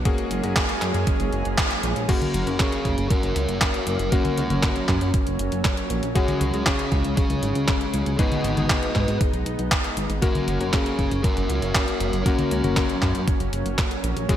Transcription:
0.05 F#3 G#3 A#3 C#4 F#4 G#4, kick, closed hi-hat
0.18 closed hi-hat
0.31 F#1, closed hi-hat
0.44 F#1 A#3 C#4 F#4 G#4, closed hi-hat
0.56 kick, clap, closed hi-hat
0.69 closed hi-hat
0.82 F#2, clap, closed hi-hat
0.94 F#2, closed hi-hat
1.07 kick, closed hi-hat
1.20 F#1, closed hi-hat
1.33 F#1, closed hi-hat
1.45 F#1, closed hi-hat
1.58 kick, clap, closed hi-hat
1.71 closed hi-hat
1.83 A#1, closed hi-hat
1.96 A#1, closed hi-hat
2.09 F#3 A#3 C#4 F#4 A#4, kick, closed hi-hat, crash
2.22 closed hi-hat, high conga
2.34 F#1, closed hi-hat
2.47 F#1 A#3 C#4 F#4 A#4, closed hi-hat
2.60 C#4 G#4, kick, clap, closed hi-hat
2.72 closed hi-hat
2.85 F#1, kick, closed hi-hat
2.98 F#1, closed hi-hat
3.10 F#4 A#4, kick, closed hi-hat
3.23 F#1, closed hi-hat
3.36 C#2, closed hi-hat
3.49 F#1, closed hi-hat
3.61 kick, clap, closed hi-hat
3.74 closed hi-hat
3.87 F#1, closed hi-hat
3.99 F#1, closed hi-hat
4.12 A#3 C#4 F#4 A#4, kick, closed hi-hat
4.25 closed hi-hat, high conga
4.38 C#2, closed hi-hat
4.50 F#1 A#3 C#4 F#4 A#4, closed hi-hat, high conga
4.63 kick, clap, closed hi-hat
4.76 closed hi-hat
4.88 F#2, kick, clap, closed hi-hat
5.01 F#2, closed hi-hat
5.14 kick, closed hi-hat
5.27 F#1, closed hi-hat
5.39 F#1, closed hi-hat
5.52 F#1, closed hi-hat
5.65 kick, clap, closed hi-hat
5.77 closed hi-hat
5.90 A#1, closed hi-hat
6.03 A#1, closed hi-hat
6.15 C#3 G#3 C#4 F#4 G#4, kick, closed hi-hat
6.28 closed hi-hat, high conga
6.41 C#2, closed hi-hat
6.54 C#2 C#3 G#3 C#4 F#4 G#4, closed hi-hat
6.66 C#4 G#4, kick, clap, closed hi-hat
6.79 closed hi-hat
6.92 C#2, kick, closed hi-hat
7.04 C#2, closed hi-hat
7.17 C#4 G#4, kick, closed hi-hat
7.30 C#2, closed hi-hat
7.43 G#1, closed hi-hat
7.55 C#2, closed hi-hat
7.68 kick, clap, closed hi-hat
7.81 closed hi-hat
7.94 C#2, closed hi-hat
8.06 C#2, closed hi-hat
8.19 G#2 G#3 B3 D#4 G#4 B4 D#5, kick, closed hi-hat
8.32 closed hi-hat, high conga
8.44 G#1, closed hi-hat
8.57 G#1 G#2 G#3 B3 D#4 G#4, closed hi-hat, high conga
8.70 kick, clap, closed hi-hat
8.83 closed hi-hat
8.95 G#2, kick, clap, closed hi-hat
9.08 G#2, closed hi-hat
9.21 kick, closed hi-hat
9.33 B1, closed hi-hat
9.46 B1, closed hi-hat
9.59 B1, closed hi-hat
9.72 kick, clap, closed hi-hat
9.84 closed hi-hat
9.97 G#1, closed hi-hat
10.10 G#1, closed hi-hat
10.22 F#3 A#3 C#4 F#4 A#4, kick, closed hi-hat
10.35 closed hi-hat, high conga
10.48 F#1, closed hi-hat
10.61 F#1 A#3 C#4 F#4 A#4, closed hi-hat
10.73 C#4 G#4, kick, clap, closed hi-hat
10.86 closed hi-hat
10.99 F#1, kick, closed hi-hat
11.11 F#1, closed hi-hat
11.24 F#4 A#4, kick, closed hi-hat
11.37 F#1, closed hi-hat
11.50 C#2, closed hi-hat
11.62 F#1, closed hi-hat
11.75 kick, clap, closed hi-hat
11.88 closed hi-hat
12.00 F#1, closed hi-hat
12.13 F#1, closed hi-hat
12.26 A#3 C#4 F#4 A#4, kick, closed hi-hat
12.39 closed hi-hat, high conga
12.51 C#2, closed hi-hat
12.64 F#1 A#3 C#4 F#4 A#4, closed hi-hat, high conga
12.77 kick, clap, closed hi-hat
12.90 closed hi-hat
13.02 F#2, kick, clap, closed hi-hat
13.15 F#2, closed hi-hat
13.28 kick, closed hi-hat
13.40 F#1, closed hi-hat
13.53 F#1, closed hi-hat
13.66 F#1, closed hi-hat
13.78 kick, clap, closed hi-hat
13.91 closed hi-hat
14.04 A#1, closed hi-hat
14.16 A#1, closed hi-hat
14.29 C#3 G#3 C#4 F#4 G#4, kick, closed hi-hat

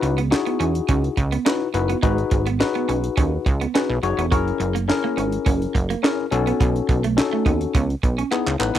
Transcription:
Already playing: D#4 E4 F#4 B4
0.02 C#2, muted clean electric guitar stroke, closed hi-hat
0.18 B3, closed hi-hat
0.31 D#4 E4 F#4 G#4, muted clean electric guitar stroke, snare, clap
0.46 B3, closed hi-hat
0.60 E2 C#4, closed hi-hat
0.75 closed hi-hat
0.88 C#2 C#4, kick, closed hi-hat
1.04 closed hi-hat
1.17 C#2, muted clean electric guitar stroke, kick, closed hi-hat
1.32 B3, closed hi-hat
1.45 C#4 D#4 E4 F#4 B4, snare, clap
1.74 F#1 D#4 E4 F#4 B4, muted clean electric guitar stroke, closed hi-hat
1.89 B3, closed hi-hat
2.02 G#1 G#3 D#4 F#4 G#4 B4, kick, closed hi-hat
2.18 closed hi-hat
2.31 G#1, muted clean electric guitar stroke, kick, closed hi-hat
2.46 B3, closed hi-hat
2.60 D#4 F#4 G#4 B4, muted clean electric guitar stroke, snare, clap
2.75 B3, closed hi-hat
2.89 B1 C#4, closed hi-hat
3.04 closed hi-hat
3.17 D#2 C#4, kick, closed hi-hat
3.46 C#2, muted clean electric guitar stroke, kick, closed hi-hat
3.61 B3, closed hi-hat
3.74 C#4 D#4 F#4 G#4 B4, snare, clap
3.90 B1
4.03 F#1 D#4 F#4 G#4 C#5, muted clean electric guitar stroke, closed hi-hat
4.18 E1 B3, closed hi-hat
4.31 F#1 C#4 E4 F#4 G#4 A#4, kick, closed hi-hat
4.48 closed hi-hat
4.60 F#1, muted clean electric guitar stroke, closed hi-hat
4.75 A#3, closed hi-hat
4.88 C#4 E4 G#4 A#4, muted clean electric guitar stroke, snare, clap
5.04 A#3
5.17 G#1 C#4, closed hi-hat
5.32 closed hi-hat
5.46 F#1 C#4, kick, closed hi-hat
5.62 closed hi-hat
5.75 F#1, muted clean electric guitar stroke, kick, closed hi-hat
5.90 A#3, closed hi-hat
6.03 C#4 E4 G#4 A#4, snare, clap
6.31 B1 C#4 D#4 F#4 A4, muted clean electric guitar stroke, closed hi-hat
6.47 B3, closed hi-hat
6.60 B1 B3, kick, closed hi-hat
6.76 closed hi-hat
6.89 B1, muted clean electric guitar stroke, kick, closed hi-hat
7.04 A3, closed hi-hat
7.17 C#4 D#4 F#4 A4, muted clean electric guitar stroke, snare, clap
7.33 A3
7.46 D#2 B3, kick, closed hi-hat
7.61 closed hi-hat
7.75 C#2 B3, kick, closed hi-hat
7.90 closed hi-hat
8.03 B1, muted clean electric guitar stroke, kick, closed hi-hat
8.18 C#4, closed hi-hat
8.31 B3 D#4 E4 G#4, clap
8.47 C#2, clap
8.59 A1 B3 D#4 E4 B4, muted clean electric guitar stroke, clap
8.75 B1 B3

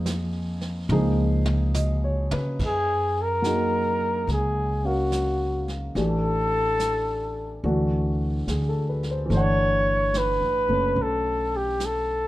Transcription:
Already playing: F2 F3 A#3 D#4 G#4
0.06 snare, hi-hat pedal
0.61 snare
0.89 C#2 F3 A#3 D#4 G#4, mid tom
1.46 mid tom
1.74 D#5, hi-hat pedal, mid tom
2.04 C#5
2.31 C#3 B4, mid tom
2.59 F#2, brush sweep, kick, snare, ride
2.65 G#4
3.22 A#4
3.42 F#3 A#3 D#4, snare, hi-hat pedal
3.47 G#4
4.27 C#2, brush sweep, snare
4.32 G#4
4.84 C#4 F#4 A#4 F5
5.12 snare, hi-hat pedal
5.68 snare
5.95 A1 E3 A3 D4 G4 A4, brush sweep, snare
6.80 snare, hi-hat pedal
7.64 D2 E3 A3 D4 F#4, brush sweep
8.47 D2 G#4, snare, hi-hat pedal
8.69 A4
8.89 B4
9.03 snare
9.11 C5
9.26 E3
9.30 G1 A3 D4 C#5, brush sweep, snare
9.37 F#5
10.14 B4, snare, hi-hat pedal
10.41 A1
10.69 F#1 A3 C#4
10.96 B1, brush sweep
11.02 A4
11.56 G4
11.80 snare, hi-hat pedal
11.85 A4

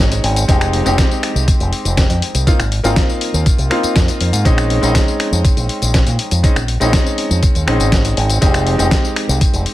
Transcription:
Already playing: G#1 G#3 C4 C#4 D#4
0.12 closed hi-hat, tambourine
0.23 G#1, open hi-hat
0.36 closed hi-hat, tambourine
0.48 F1 G#3 C4 D#4 G4, kick, closed hi-hat, tambourine
0.61 finger snap, closed hi-hat, tambourine
0.73 open hi-hat
0.85 F1 G#3 C4 D#4 G4, closed hi-hat, tambourine
0.98 kick, snare, closed hi-hat, tambourine
1.11 tambourine
1.23 finger snap, open hi-hat
1.35 C2, tambourine
1.48 muted fingered electric bass stroke, kick, closed hi-hat, tambourine
1.60 F1, closed hi-hat, tambourine
1.73 open hi-hat
1.85 F1, closed hi-hat, tambourine
1.97 kick, snare, closed hi-hat, tambourine
2.10 F2, closed hi-hat, tambourine
2.22 open hi-hat
2.34 C2, closed hi-hat, tambourine
2.47 A#3 C4 D#4 F4, kick, closed hi-hat, tambourine
2.59 G#1, finger snap, closed hi-hat, tambourine
2.72 open hi-hat
2.83 G#1 A#3 C4 D#4 F4, closed hi-hat, tambourine
2.96 kick, snare, closed hi-hat, tambourine
3.10 tambourine
3.21 open hi-hat
3.34 D#2, tambourine
3.46 kick, closed hi-hat, tambourine
3.58 C2, closed hi-hat, tambourine
3.70 A#3 C4 D#4 F4, finger snap, open hi-hat
3.83 muted fingered electric bass stroke, closed hi-hat, tambourine
3.96 F2, kick, snare, closed hi-hat, tambourine
4.08 closed hi-hat, tambourine
4.20 F2, open hi-hat
4.33 G#2, closed hi-hat, tambourine
4.45 A#1 G#3 C4 C#4 D#4, kick, closed hi-hat, tambourine
4.58 finger snap, closed hi-hat, tambourine
4.70 open hi-hat
4.81 A#1 G#3 C4 C#4 D#4, closed hi-hat, tambourine
4.95 kick, snare, closed hi-hat, tambourine
5.08 tambourine
5.20 finger snap, open hi-hat
5.32 F2, tambourine
5.45 muted fingered electric bass stroke, kick, closed hi-hat, tambourine
5.57 A#1, closed hi-hat, tambourine
5.69 open hi-hat
5.82 A#1, closed hi-hat, tambourine
5.94 kick, snare, closed hi-hat, tambourine
6.06 A#2, closed hi-hat, tambourine
6.19 open hi-hat
6.31 F2, closed hi-hat, tambourine
6.43 G#3 C4 C#4 D#4, kick, closed hi-hat, tambourine
6.56 A#1, finger snap, closed hi-hat, tambourine
6.68 open hi-hat
6.80 A#1 G#3 C4 C#4 D#4, closed hi-hat, tambourine
6.93 kick, snare, closed hi-hat, tambourine
7.06 tambourine
7.18 open hi-hat
7.30 F2, tambourine
7.43 kick, closed hi-hat, tambourine
7.55 D#2, closed hi-hat, tambourine
7.67 A#1 G#3 C4 C#4 D#4, finger snap, open hi-hat
7.80 G#1, closed hi-hat, tambourine
7.92 kick, snare, closed hi-hat, tambourine
8.05 closed hi-hat, tambourine
8.17 G#1, open hi-hat
8.30 closed hi-hat, tambourine
8.41 F1 G#3 C4 D#4 G4, kick, closed hi-hat, tambourine
8.54 finger snap, closed hi-hat, tambourine
8.67 open hi-hat
8.78 F1 G#3 C4 D#4 G4, closed hi-hat, tambourine
8.91 kick, snare, closed hi-hat, tambourine
9.05 tambourine
9.16 finger snap, open hi-hat
9.29 C2, tambourine
9.41 kick, closed hi-hat, tambourine
9.53 F1, closed hi-hat, tambourine
9.66 open hi-hat

